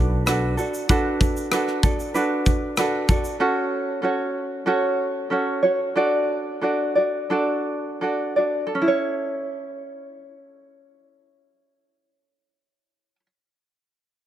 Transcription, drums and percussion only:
0.27 cross-stick loud
0.27 shaker medium
0.58 shaker soft
0.74 shaker soft
0.89 kick loud
0.89 shaker medium
1.21 kick medium
1.21 shaker soft
1.37 shaker soft
1.52 cross-stick medium
1.52 shaker medium
1.68 cross-stick soft
1.83 kick medium
1.83 shaker soft
2.00 shaker soft
2.15 shaker medium
2.46 kick medium
2.46 shaker soft
2.77 cross-stick medium
2.77 shaker medium
3.09 kick medium
3.09 shaker soft
3.24 shaker soft

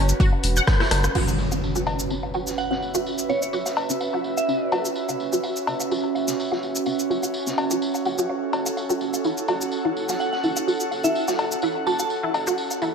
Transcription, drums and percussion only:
0.09 open hi-hat soft
0.09 shaker medium
0.20 kick loud
0.20 tambourine medium
0.33 low woodblock soft
0.43 open hi-hat medium
0.43 tambourine medium
0.56 shaker medium
0.67 kick loud
0.67 cross-stick medium
0.67 snare loud
0.67 tambourine medium
0.67 low woodblock soft
0.80 cross-stick medium
0.80 snare loud
0.80 tambourine medium
0.91 cross-stick medium
0.91 snare loud
0.91 open hi-hat medium
0.91 tambourine medium
0.91 cowbell medium
1.04 cross-stick medium
1.04 low woodblock soft
1.04 shaker medium
1.15 crash medium
1.15 tambourine medium
1.15 low woodblock soft
1.28 shaker soft
1.39 tambourine medium
1.52 low woodblock soft
1.52 shaker soft
1.64 tambourine medium
1.76 shaker soft
1.87 tambourine medium
1.87 cowbell medium
1.87 low woodblock soft
1.99 shaker medium
2.10 tambourine medium
2.23 low woodblock soft
2.34 tambourine medium
2.47 snare soft
2.47 shaker soft
2.58 tambourine medium
2.58 low woodblock soft
2.71 snare soft
2.82 tambourine medium
2.95 low woodblock soft
2.95 shaker medium
3.06 tambourine medium
3.18 shaker soft
3.29 tambourine medium
3.29 low woodblock soft
3.42 shaker soft
3.53 tambourine medium
3.65 snare soft
3.65 low woodblock soft
3.65 shaker soft
3.77 tambourine medium
3.77 cowbell medium
3.90 shaker medium
4.01 tambourine medium
4.01 low woodblock soft
4.24 tambourine medium
4.37 low woodblock soft
4.37 shaker soft
4.49 tambourine medium
4.72 tambourine medium
4.72 cowbell medium
4.72 low woodblock soft
4.85 shaker soft
4.96 tambourine medium
5.09 low woodblock soft
5.09 shaker soft
5.20 tambourine medium
5.33 shaker soft
5.43 tambourine medium
5.43 low woodblock soft
5.56 shaker soft
5.67 tambourine medium
5.67 cowbell medium
5.80 low woodblock soft
5.80 shaker soft
5.91 tambourine medium
6.15 tambourine medium
6.15 low woodblock soft
6.28 snare soft
6.28 shaker soft
6.40 tambourine medium
6.52 snare soft
6.52 low woodblock soft
6.63 tambourine medium
6.75 shaker soft
6.86 tambourine medium
6.86 low woodblock soft
6.99 shaker soft
7.11 tambourine medium
7.23 low woodblock soft
7.23 shaker soft
7.34 tambourine medium
7.47 snare medium
7.47 shaker soft
7.58 tambourine medium
7.58 cowbell medium
7.58 low woodblock soft
7.71 shaker soft
7.82 tambourine medium
7.95 low woodblock soft
7.95 shaker soft
8.05 tambourine medium
8.18 shaker soft
8.30 low woodblock soft
8.53 tambourine medium
8.53 cowbell medium
8.66 low woodblock soft
8.66 shaker soft
8.77 tambourine medium
8.77 low woodblock soft
8.90 shaker soft
9.01 tambourine medium
9.14 low woodblock soft
9.14 shaker soft
9.24 tambourine medium
9.38 shaker soft
9.48 tambourine medium
9.48 cowbell medium
9.48 low woodblock soft
9.61 shaker soft
9.71 tambourine medium
9.85 low woodblock soft
9.97 tambourine medium
10.09 snare soft
10.09 shaker soft
10.20 tambourine medium
10.20 low woodblock soft
10.33 snare soft
10.44 tambourine medium
10.56 low woodblock soft
10.56 shaker soft
10.68 tambourine medium
10.80 shaker soft
10.91 tambourine medium
10.91 low woodblock soft
11.04 shaker soft
11.15 tambourine medium
11.28 snare medium
11.28 low woodblock soft
11.28 shaker soft
11.39 tambourine medium
11.39 cowbell medium
11.52 shaker soft
11.62 tambourine medium
11.62 low woodblock soft
11.87 tambourine medium
11.99 low woodblock soft
11.99 shaker soft
12.10 tambourine medium
12.34 tambourine medium
12.34 cowbell medium
12.34 low woodblock soft
12.47 shaker soft
12.58 tambourine medium
12.71 low woodblock soft
12.71 shaker soft
12.82 tambourine medium

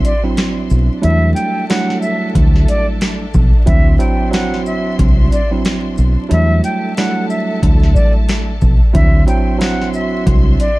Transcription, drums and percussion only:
0.05 closed hi-hat medium
0.05 shaker medium
0.37 snare loud
0.37 closed hi-hat medium
0.70 shaker medium
1.03 closed hi-hat medium
1.36 closed hi-hat medium
1.36 shaker medium
1.70 snare loud
1.70 closed hi-hat medium
1.90 snare soft
2.02 shaker soft
2.35 kick medium
2.35 closed hi-hat medium
2.56 snare soft
2.68 closed hi-hat medium
2.68 shaker medium
3.01 snare loud
3.01 closed hi-hat medium
3.34 kick loud
3.34 shaker medium
3.67 kick loud
3.67 closed hi-hat medium
4.00 closed hi-hat medium
4.00 shaker medium
4.33 snare loud
4.33 closed hi-hat medium
4.54 snare soft
4.66 shaker soft
4.99 kick medium
4.99 closed hi-hat loud
5.32 closed hi-hat medium
5.32 shaker medium
5.65 snare loud
5.65 closed hi-hat medium
5.98 shaker medium
6.31 closed hi-hat medium
6.64 closed hi-hat medium
6.64 shaker medium
6.97 snare loud
6.97 closed hi-hat medium
7.30 shaker soft
7.63 kick medium
7.63 closed hi-hat medium
7.83 snare soft
7.95 kick medium
7.95 shaker medium
8.29 snare loud
8.29 closed hi-hat medium
8.61 kick loud
8.61 shaker medium
8.95 kick loud
8.95 closed hi-hat medium
9.28 closed hi-hat medium
9.28 shaker medium
9.61 snare loud
9.61 closed hi-hat medium
9.82 snare soft
9.94 shaker soft
10.26 kick medium
10.26 closed hi-hat medium
10.60 closed hi-hat medium
10.60 shaker medium

